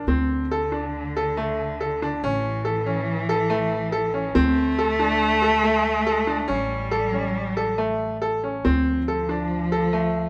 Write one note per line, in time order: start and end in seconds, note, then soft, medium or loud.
0.07 2.19 D2 medium
0.07 2.26 D3 medium
0.07 0.44 C4 medium
0.51 0.69 A4 medium
0.72 1.08 D4 medium
1.17 1.34 A4 medium
1.37 1.73 A3 medium
1.80 1.99 A4 medium
2.02 2.20 D4 medium
2.23 4.32 A1 medium
2.23 4.37 E3 medium
2.23 2.59 C#4 medium
2.65 2.83 A4 medium
2.86 3.22 C#4 medium
3.29 3.47 A4 medium
3.50 3.86 A3 medium
3.92 4.11 A4 medium
4.14 4.32 C#4 medium
4.35 6.45 D2 medium
4.35 6.51 A3 loud
4.35 4.71 C4 medium
4.79 4.96 A4 medium
4.99 5.35 D4 medium
5.42 5.60 A4 medium
5.64 6.00 A3 medium
6.07 6.25 A4 medium
6.27 6.46 D4 medium
6.48 8.62 A1 medium
6.48 8.44 G3 medium
6.48 6.84 C#4 medium
6.91 7.10 A4 medium
7.13 7.49 C#4 medium
7.57 7.75 A4 medium
7.78 8.15 A3 medium
8.22 8.40 A4 medium
8.44 8.62 C#4 medium
8.65 10.29 D2 medium
8.65 10.29 F3 loud
8.65 9.01 C4 medium
9.08 9.26 A4 medium
9.29 9.65 D4 medium
9.72 9.90 A4 medium
9.93 10.29 A3 medium